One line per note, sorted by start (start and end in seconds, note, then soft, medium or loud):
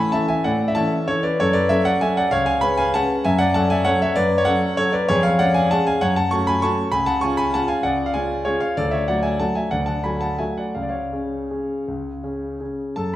0.00 0.13 A2 medium
0.00 0.13 E3 medium
0.00 0.13 C#4 medium
0.00 0.13 A4 medium
0.00 0.13 F#5 medium
0.00 0.11 G#5 loud
0.00 0.12 A5 loud
0.00 0.11 B5 loud
0.00 0.13 C#6 loud
0.12 0.41 E3 medium
0.12 0.41 C#4 medium
0.12 0.42 A4 medium
0.12 0.28 E5 medium
0.12 0.28 A5 loud
0.28 0.44 E5 medium
0.28 0.44 G#5 loud
0.44 0.75 A2 medium
0.44 0.67 D5 medium
0.44 0.68 F#5 loud
0.68 0.75 E5 loud
0.75 1.05 E3 medium
0.75 1.05 C#4 medium
0.75 1.05 A4 medium
0.75 1.06 E5 medium
0.75 1.07 A5 loud
1.08 1.36 E3 medium
1.08 1.36 C#4 medium
1.08 1.23 A4 medium
1.08 1.23 C#5 loud
1.23 1.38 B4 medium
1.23 1.39 D5 loud
1.40 1.70 F#2 medium
1.40 1.54 A4 loud
1.40 1.55 C#5 loud
1.53 1.69 B4 medium
1.53 1.70 D5 loud
1.69 1.98 F#3 medium
1.69 1.98 C#4 medium
1.69 1.99 A4 medium
1.69 1.85 C#5 medium
1.69 1.85 E5 loud
1.85 2.01 D5 medium
1.85 2.01 F#5 loud
2.01 2.29 F#3 medium
2.01 2.30 C#4 medium
2.01 2.30 A4 medium
2.01 2.16 E5 medium
2.01 2.17 G#5 loud
2.17 2.32 D5 medium
2.17 2.32 F#5 loud
2.31 2.62 C#2 medium
2.31 2.46 C#5 loud
2.31 2.45 F5 loud
2.46 2.61 F5 loud
2.46 2.61 G#5 loud
2.61 2.91 G#3 medium
2.61 2.91 C#4 medium
2.61 2.91 B4 medium
2.61 2.76 G#5 loud
2.61 2.78 B5 loud
2.77 2.93 F5 loud
2.77 2.94 G#5 loud
2.94 3.22 G#3 medium
2.94 3.22 C#4 medium
2.94 3.23 B4 medium
2.94 3.23 F#5 loud
2.94 3.25 A5 loud
3.25 3.54 F#2 medium
3.25 3.39 E5 loud
3.25 3.40 G#5 loud
3.38 3.54 D5 loud
3.38 3.54 F#5 loud
3.54 3.83 F#3 medium
3.54 3.83 C#4 medium
3.54 3.84 A4 medium
3.54 3.70 F#5 medium
3.54 3.70 A5 loud
3.70 3.86 E5 loud
3.70 3.86 G#5 loud
3.85 4.13 F#3 medium
3.85 4.13 C#4 medium
3.85 4.13 A4 medium
3.85 4.00 C#5 medium
3.85 4.00 F#5 loud
4.02 4.16 C#5 medium
4.02 4.16 E5 loud
4.16 4.45 F#2 medium
4.16 4.37 B4 medium
4.16 4.38 D5 loud
4.38 4.45 C#5 loud
4.45 4.75 F#3 medium
4.45 4.75 C#4 medium
4.45 4.75 A4 medium
4.45 4.76 C#5 loud
4.45 4.77 F#5 loud
4.77 5.06 F#3 medium
4.77 5.06 C#4 medium
4.77 4.93 A4 medium
4.77 4.93 C#5 loud
4.93 5.08 B4 medium
4.93 5.08 D5 loud
5.08 5.39 F2 medium
5.08 5.23 G#4 loud
5.08 5.23 C#5 loud
5.23 5.38 C#5 medium
5.23 5.39 F5 loud
5.39 5.68 G#3 medium
5.39 5.68 C#4 medium
5.39 5.68 G#4 medium
5.39 5.54 D5 loud
5.39 5.55 F#5 loud
5.54 5.70 F5 medium
5.54 5.71 G#5 loud
5.71 5.99 G#3 medium
5.71 5.99 C#4 medium
5.71 5.99 G#4 medium
5.71 5.86 F#5 loud
5.71 5.86 A5 loud
5.87 6.01 F5 medium
5.87 6.02 G#5 loud
6.01 6.31 F#2 medium
6.01 6.16 C#5 medium
6.01 6.16 F#5 loud
6.16 6.31 F#5 loud
6.16 6.31 A5 loud
6.31 6.59 A3 medium
6.31 6.60 C#4 medium
6.31 6.60 F#4 medium
6.31 6.46 A5 loud
6.31 6.47 C#6 loud
6.47 6.62 G#5 loud
6.47 6.62 B5 loud
6.62 6.90 A3 medium
6.62 6.90 C#4 medium
6.62 6.90 F#4 medium
6.62 6.91 A5 loud
6.62 6.92 C#6 loud
6.92 7.22 C#2 medium
6.92 7.06 G#5 loud
6.92 7.07 B5 loud
7.06 7.21 F#5 medium
7.06 7.22 A5 loud
7.21 7.50 G#3 medium
7.21 7.51 C#4 medium
7.21 7.51 F4 medium
7.21 7.37 G#5 loud
7.21 7.37 C#6 loud
7.37 7.53 G#5 loud
7.37 7.53 B5 loud
7.54 7.82 G#3 medium
7.54 7.82 C#4 medium
7.54 7.82 F4 medium
7.54 7.69 F#5 medium
7.54 7.69 A5 loud
7.68 7.83 F5 medium
7.68 7.84 G#5 loud
7.83 8.13 C#2 medium
7.83 8.05 D5 medium
7.83 8.06 F#5 loud
8.06 8.14 F5 loud
8.14 8.43 G#3 medium
8.14 8.43 C#4 medium
8.14 8.43 F4 medium
8.14 8.44 F5 medium
8.14 8.46 G#5 loud
8.45 8.74 G#3 medium
8.45 8.74 C#4 soft
8.45 8.75 F4 medium
8.45 8.61 G#4 medium
8.45 8.60 C#5 loud
8.60 8.76 C#5 medium
8.60 8.76 F5 loud
8.77 9.07 D2 medium
8.77 8.92 A4 medium
8.77 8.92 D5 loud
8.91 9.07 C#5 medium
8.91 9.08 E5 medium
9.08 9.37 F#3 soft
9.08 9.38 A3 soft
9.08 9.38 F#4 medium
9.08 9.24 D5 medium
9.08 9.24 F#5 medium
9.23 9.39 E5 medium
9.23 9.40 G#5 loud
9.39 9.69 F#3 soft
9.39 9.69 A3 soft
9.39 9.69 F#4 medium
9.39 9.55 F#5 medium
9.39 9.56 A5 loud
9.55 9.71 E5 medium
9.55 9.72 G#5 medium
9.71 10.04 D2 medium
9.71 9.87 D5 medium
9.71 9.86 F#5 loud
9.86 10.03 F#5 medium
9.86 10.04 A5 loud
10.04 10.36 F#3 soft
10.04 10.36 A3 soft
10.04 10.37 F#4 soft
10.04 10.21 G#5 medium
10.04 10.21 B5 medium
10.21 10.38 F#5 medium
10.21 10.39 A5 medium
10.39 10.72 F#3 soft
10.39 10.72 A3 soft
10.39 10.72 F#4 soft
10.39 10.56 E5 medium
10.39 10.57 G#5 medium
10.57 10.75 D5 medium
10.57 10.76 F#5 medium
10.75 11.11 C#2 medium
10.75 10.83 F5 medium
10.83 10.91 D5 medium
10.89 12.75 C#5 medium
10.89 12.78 F5 medium
11.12 11.46 C#3 soft
11.12 11.47 C#4 soft
11.12 11.47 G#4 soft
11.51 11.83 C#3 soft
11.51 11.84 C#4 soft
11.51 11.84 G#4 soft
11.88 12.22 C#2 medium
12.23 12.57 C#3 soft
12.23 12.57 C#4 soft
12.23 12.57 G#4 soft
12.60 12.93 C#3 soft
12.60 12.94 C#4 soft
12.60 12.94 G#4 soft
12.96 13.16 F#2 medium
12.96 13.13 A4 medium
12.96 13.13 A5 medium